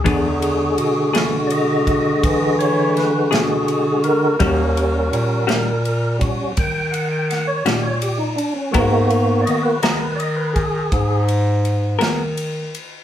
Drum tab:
RD |xxxxxxxxxxxx|xxxxxxxxxxxx|xxxxxxxxxxxx|
SD |---o----oo--|---o----oo--|---o-----o--|
BD |o----oo-----|o----oo-----|o----oo-----|